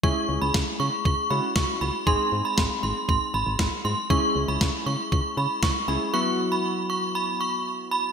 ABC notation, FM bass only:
X:1
M:4/4
L:1/16
Q:1/4=118
K:C#m
V:1 name="FM bass" clef=bass
C,, z C,, C,, C,, z C, z C,, z C, z C,, z C,, z | G,,, z G,, z G,,, z G,,, z G,,, z G,,, G,,, G,,, z G,, z | C,, z C,, C,, C,, z C, z C,, z C, z C,, z C,, z | z16 |]